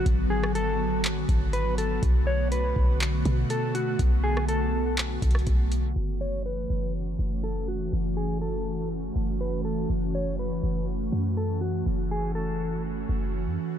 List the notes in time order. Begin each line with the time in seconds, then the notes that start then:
Already playing: D3 F#3 B3 F#4
0.06 G#1, kick, closed hi-hat
0.30 G#4
0.43 cross-stick
0.55 A4, closed hi-hat
1.04 clap, closed hi-hat
1.29 G#1, kick, closed hi-hat
1.53 B4, closed hi-hat
1.78 A4, closed hi-hat
2.03 B1 A3 B3 F#4, kick, closed hi-hat
2.27 C#5
2.52 B4, closed hi-hat
2.76 B1, kick
3.01 clap, closed hi-hat
3.25 B2, kick, closed hi-hat
3.50 A4, closed hi-hat
3.75 F#4, closed hi-hat
3.99 B1, kick, closed hi-hat
4.24 G#4
4.37 cross-stick
4.49 A4, closed hi-hat
4.98 clap, closed hi-hat
5.22 B1, kick, closed hi-hat
5.31 closed hi-hat
5.35 cross-stick, closed hi-hat
5.47 B1, kick, closed hi-hat
5.72 closed hi-hat
5.96 F#1 E3 A3 C#4 F#4
6.21 C#5
6.46 B4
6.70 F#1
7.19 F#1
7.44 A4
7.68 F#4
7.93 F#1
8.17 G#4
8.42 A4
9.16 F#1
9.41 B4
9.65 A4
9.90 F#1
10.15 C#5
10.39 B4
10.63 F#1
11.12 F#2
11.37 A4
11.61 F#4
11.86 F#1
12.11 G#4
12.35 A4
13.09 F#1
13.46 F#2